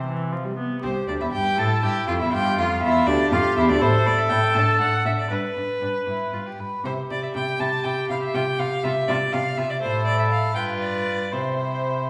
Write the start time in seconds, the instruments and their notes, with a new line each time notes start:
Already playing: cello C3
0.06 viola E3
0.32 viola F3
0.44 viola G3
0.57 viola B3
0.82 cello C2, violin C4 C5, viola G4
1.08 cello D2, violin D4 D5
1.21 cello E2, violin E4 E5
1.32 cello G2, violin G4 G5
1.58 cello A2, viola E4, violin A4 A5
1.83 cello G2, violin G4 G5
2.07 cello F2, violin F4 F5
2.20 cello E2, violin E4 E5
2.33 cello G2, viola F4, violin G4 G5
2.58 cello F2, violin F4 F5
2.82 cello E2, violin E4 E5
3.07 cello D2, violin D4 D5, viola G4
3.31 cello F2, violin F4 F5
3.57 cello E2, violin E4 E5
3.69 cello D2, violin D4 D5
3.81 cello A2, violin E4 C5, viola A4
4.05 cello A2, violin E4 D5
4.19 violin E5
4.30 cello A2, violin E4 G5
4.55 cello A2, violin D4 A5
4.80 cello A2, violin D4 F#5
5.05 cello A2, violin D4 E5
5.19 violin D5
5.30 cello G2, violin D4 B4, viola B4
5.56 cello G2, violin D4
5.82 cello G2, violin D4
6.07 cello G2, violin E4
6.33 cello G2, violin F4
6.46 violin G4
6.59 cello G2, violin B4
6.84 cello C3, violin E4 C5, viola G4
7.10 cello C3, violin E4 D5
7.23 violin E5
7.34 cello C3, violin E4 G5
7.60 cello C3, violin E4 A5
7.84 cello C3, violin E4 G5
8.09 cello C3, violin E4 F5
8.23 violin E5
8.34 cello C3, violin F4 G5
8.59 cello C3, violin F4 F5
8.84 cello C3, violin F4 E5
9.08 cello C3, violin F4 D5
9.32 cello C3, violin F4 F5
9.57 cello C3, violin F4 E5
9.70 violin D5
9.82 cello A2, violin E4 C5, viola A4
10.07 violin D5
10.19 violin E5
10.31 violin F5
10.55 cello G2, violin F4 G5, viola B4
10.81 violin D5
11.32 cello C3, violin E4 C5, viola C5